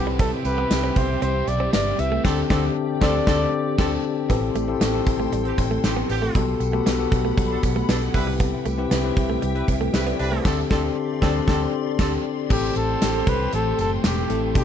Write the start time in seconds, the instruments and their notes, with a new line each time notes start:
Already playing: fingered electric bass C2, tine electric piano C3 C4 E4 G4 B4, horn section E3 C4 G4, overdriven electric guitar G3 C4, ambient pad G4 E5 G5
0.07 clean electric guitar G3
0.18 overdriven electric guitar C3 G3 C4, clean electric guitar C4, flugelhorn A4, kick, closed hi-hat, tambourine
0.45 fingered electric bass C2, flugelhorn B4, muted clean electric guitar stroke, closed hi-hat, tambourine
0.58 clean electric guitar B3
0.70 fingered electric bass C2, muted clean electric guitar stroke, snare, closed hi-hat, tambourine
0.84 clean electric guitar C4
0.96 fingered electric bass C2, clean electric guitar B3, flugelhorn C5, kick, closed hi-hat
1.22 fingered electric bass C2, overdriven electric guitar C3 G3 C4, clean electric guitar C4, flugelhorn C5, closed hi-hat, tambourine
1.48 fingered electric bass B1, flugelhorn D5, muted clean electric guitar stroke, closed hi-hat, tambourine
1.60 clean electric guitar C4
1.73 fingered electric bass G1, clean electric guitar B3, flugelhorn D5, snare, closed hi-hat, tambourine
1.98 fingered electric bass C2, overdriven electric guitar G3 C4, tine electric piano C4 E4 G4 B4, flugelhorn E5, muted clean electric guitar stroke, closed hi-hat, tambourine
2.12 clean electric guitar A3
2.24 fingered electric bass D2, overdriven electric guitar D3 A3 D4, tine electric piano D3 C4 D4 G4 A4, horn section D3 C4 A4, ambient pad G4 D5, flugelhorn G4, kick, snare, crash
2.49 fingered electric bass D2, overdriven electric guitar D3 A3 D4, horn section D3 C4 A4, tine electric piano D3 C4 D4 G4 A4, kick, snare
3.01 fingered electric bass D2, overdriven electric guitar D3 A3 D4, horn section D3 C4 A4, tine electric piano D3 C4 D4 G4 A4, flugelhorn D5, kick, snare
3.27 fingered electric bass D2, overdriven electric guitar D3 A3 D4, horn section D3 C4 A4, tine electric piano C4 D4 G4 A4, kick, snare
3.78 fingered electric bass D2, horn section D3 C4 A4, overdriven electric guitar A3 D4, tine electric piano C4 D4 G4 A4, kick, snare, crash
4.29 fingered electric bass A1, tine electric piano A2 C4 E4 G4 A4, clean electric guitar B3, ambient pad A4 G5 C6, kick, closed hi-hat, tambourine
4.55 fingered electric bass A1, clean electric guitar A3, closed hi-hat, tambourine
4.68 tine electric piano C4 E4 G4 A4, muted clean electric guitar stroke
4.80 fingered electric bass A1, clean electric guitar B3, snare, closed hi-hat, tambourine
4.93 tine electric piano C4 E4 G4 A4
5.06 fingered electric bass A1, muted clean electric guitar stroke, kick, closed hi-hat, tambourine
5.20 clean electric guitar A3
5.32 fingered electric bass A1, clean electric guitar G3, closed hi-hat, tambourine
5.45 horn section E3 C4 G4, muted clean electric guitar stroke, closed hi-hat
5.58 fingered electric bass A1, kick, closed hi-hat, tambourine
5.71 clean electric guitar A3
5.83 fingered electric bass A1, horn section E3 C4 G4, snare, closed hi-hat, tambourine
5.97 clean electric guitar B3
6.09 fingered electric bass A1, horn section D3 B3 G4, muted clean electric guitar stroke, open hi-hat, tambourine
6.22 clean electric guitar A3
6.34 fingered electric bass B1, tine electric piano B2 B3 F#4 G4 A4, clean electric guitar G3, ambient pad F#5 B5, kick, closed hi-hat, tambourine
6.60 fingered electric bass B1, muted clean electric guitar stroke, closed hi-hat, tambourine
6.73 clean electric guitar A3, tine electric piano B3 F#4 G4 A4
6.86 fingered electric bass B1, clean electric guitar B3, snare, closed hi-hat, tambourine
6.99 tine electric piano B3 F#4 G4 A4
7.12 fingered electric bass B1, muted clean electric guitar stroke, kick, closed hi-hat, tambourine
7.25 clean electric guitar A3
7.37 fingered electric bass B1, clean electric guitar G3, kick, closed hi-hat, tambourine
7.50 horn section F#3 D4 A4, muted clean electric guitar stroke
7.63 fingered electric bass B1, kick, closed hi-hat, tambourine
7.76 clean electric guitar A3
7.89 fingered electric bass B1, horn section F#3 D4 A4, clean electric guitar B3, snare, closed hi-hat, tambourine
8.02 closed hi-hat
8.14 fingered electric bass C2, tine electric piano C3 C4 E4 G4 B4, horn section G3 E4 B4, ambient pad G4 E5 G5, muted clean electric guitar stroke, kick, open hi-hat, tambourine
8.27 clean electric guitar G3
8.40 clean electric guitar B3, kick, closed hi-hat, tambourine
8.65 fingered electric bass C2, clean electric guitar A3, closed hi-hat, tambourine
8.78 tine electric piano C4 E4 G4 B4, muted clean electric guitar stroke
8.91 fingered electric bass C2, clean electric guitar B3, snare, closed hi-hat, tambourine
9.04 tine electric piano C4 E4 G4 B4
9.17 fingered electric bass C2, muted clean electric guitar stroke, kick, closed hi-hat
9.30 clean electric guitar A3
9.42 fingered electric bass C2, clean electric guitar G3, closed hi-hat, tambourine
9.55 horn section G3 E4 B4, muted clean electric guitar stroke, closed hi-hat
9.68 fingered electric bass C2, kick, closed hi-hat, tambourine
9.81 clean electric guitar A3
9.94 fingered electric bass C2, horn section G3 E4 B4, tine electric piano A4 C5, snare, closed hi-hat, tambourine
10.07 clean electric guitar B3, tine electric piano B4 D5, closed hi-hat
10.19 fingered electric bass C2, horn section G3 D4 B4, tine electric piano C5 E5, muted clean electric guitar stroke, open hi-hat, tambourine
10.32 clean electric guitar A3, tine electric piano A4 C5
10.45 fingered electric bass D2, horn section D3 C4 A4, tine electric piano D3 C4 D4 G4 A4, ambient pad G4 D5 C6, kick, snare, crash
10.70 fingered electric bass D2, horn section D3 C4 A4, tine electric piano C4 D4 G4 A4, kick, snare
11.21 fingered electric bass D2, horn section D3 C4 A4, tine electric piano C4 D4 G4 A4, kick, snare
11.47 fingered electric bass D2, horn section D3 C4 A4, tine electric piano C4 D4 G4 A4, kick, snare
11.99 fingered electric bass D2, horn section D3 C4 A4, kick, snare, crash
12.49 fingered electric bass A1, overdriven electric guitar A2 E3 A3, tine electric piano A2 A3 C4 E4 G4 A4, horn section A3 G4 C5, flugelhorn G4, ambient pad A4 G5 C6, kick, crash, tambourine
12.76 fingered electric bass A1, flugelhorn A4, closed hi-hat, tambourine
13.01 fingered electric bass A1, snare, closed hi-hat, tambourine
13.27 fingered electric bass C2, flugelhorn B4, kick, closed hi-hat
13.52 fingered electric bass A1, overdriven electric guitar A2 E3 A3, flugelhorn A4, closed hi-hat, tambourine
13.79 fingered electric bass F#1, flugelhorn A4, closed hi-hat, tambourine
14.04 fingered electric bass E1, flugelhorn G4, snare, closed hi-hat, tambourine
14.29 fingered electric bass A1, overdriven electric guitar E3 A3, tine electric piano A3 C4 E4 G4 A4, closed hi-hat, tambourine
14.54 fingered electric bass B1, overdriven electric guitar G2 D3 G3, tine electric piano B2 B3 D4 F#4 G4 A4, horn section B3 A4 D5, flugelhorn G4, ambient pad F#5 B5, kick, closed hi-hat, tambourine